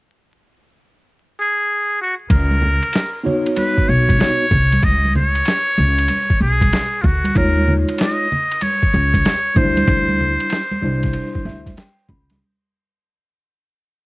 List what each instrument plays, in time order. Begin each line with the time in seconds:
1.40 muted trumpet G#4
2.01 muted trumpet F#4
2.30 upright bass C#2, muted trumpet A#4, kick, ride, maracas
2.51 high conga, maracas
2.62 low conga, maracas
2.82 ride, maracas
2.93 snare, hi-hat pedal, ride, maracas
3.13 maracas
3.23 tine electric piano B3 D#4 F#4 C#5, low conga, maracas
3.45 ride, maracas
3.56 muted trumpet B4, ride, high conga, maracas
3.78 kick, maracas
3.87 upright bass B1, muted trumpet C#5, maracas
4.09 kick, ride, high conga, maracas
4.19 tine electric piano B3 D#4 F#4 C#5, snare, hi-hat pedal, ride, maracas
4.42 maracas
4.51 upright bass C2, kick, low conga, maracas
4.72 ride, high conga, maracas
4.83 upright bass C#2, muted trumpet D#5, kick, ride, maracas
5.05 high conga, maracas
5.15 muted trumpet C#5, low conga, maracas
5.35 ride, maracas
5.45 snare, hi-hat pedal, ride, maracas
5.67 maracas
5.78 upright bass C#2, low conga, maracas
5.98 ride, maracas
6.08 ride, high conga, maracas
6.30 kick, maracas
6.40 upright bass B1, muted trumpet G#4, maracas
6.61 kick, ride, high conga, maracas
6.73 snare, hi-hat pedal, ride, maracas
6.93 maracas
7.02 upright bass D2, muted trumpet F4, kick, low conga, maracas
7.06 muted trumpet F#4
7.24 ride, high conga, maracas
7.35 upright bass D#2, tine electric piano G#3 D#4 F4 C#5, muted trumpet A#4, kick, ride, maracas
7.56 high conga, maracas
7.68 low conga, maracas
7.88 ride, maracas
7.98 muted trumpet D#5, snare, hi-hat pedal, ride, maracas
8.20 maracas
8.32 low conga, maracas
8.50 ride, maracas
8.61 muted trumpet C#5, ride, high conga, maracas
8.82 kick, maracas
8.92 upright bass C#2, maracas
9.14 kick, ride, high conga, maracas
9.24 snare, hi-hat pedal, ride, maracas
9.46 maracas
9.54 upright bass D2, tine electric piano F#3 D4 E4 C5, muted trumpet C5, kick, low conga, maracas
9.61 tine electric piano G3
9.77 ride, high conga, maracas
9.88 upright bass D2, kick, ride, maracas
10.09 high conga, maracas
10.20 low conga, maracas
10.40 ride, maracas
10.50 snare, hi-hat pedal, ride, maracas
10.71 high conga, maracas
10.81 upright bass C2, tine electric piano G3 D4 E4 C5, low conga, maracas
11.03 kick, snare, ride, maracas
11.13 ride, maracas
11.35 kick, maracas
11.45 upright bass D2, tine electric piano E5, snare, maracas
11.66 kick, snare, ride, high conga, maracas
11.77 tine electric piano G5, snare, hi-hat pedal, ride, maracas
11.99 maracas
12.09 upright bass C#2, tine electric piano B5, kick, low conga, maracas
12.30 snare, ride, high conga, maracas